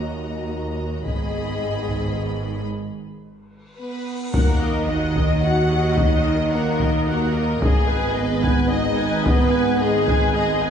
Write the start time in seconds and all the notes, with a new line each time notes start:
Already playing: D#2 D#3 F#3 A#3 F#4 A#4 D#5 A#5
1.04 G#1 G#2 D#3 G#3 B3 G#4 D#5 B5, taiko
1.87 taiko
2.70 cymbal swell
3.78 B3 B4
4.33 D#2 D#3 F#3 A#3 D#4 F#4 A#4 F#5, taiko, sub drop
4.61 A#4 D#5
4.87 D#4 F#4 D#5 F#5
5.16 A#4 D#5, taiko
5.42 F#4 F#5
5.70 A#4 D#5
5.96 D#4 F#4 D#5 F#5, taiko
6.24 A#4 D#5
6.51 A#3 F#4 A#4 F#5
6.79 A#4 D#5, taiko
7.06 F#4 A#4 F#5
7.10 A#3
7.33 A#4 D#5
7.60 G#1 G#2 D#3 G#3 B3 G#4 D#5, taiko
7.87 B4 G#5
8.13 B3 G#4 B4 D#5
8.43 B4 G#5, taiko
8.69 D#4 G#4 D#5
8.96 B4 G#5
9.24 B3 G#4 B4 D#5, taiko
9.51 B4 G#5
9.79 G#3 G#4 D#5
10.06 B4 G#5, taiko
10.33 G#3 G#4 D#5
10.63 B4 G#5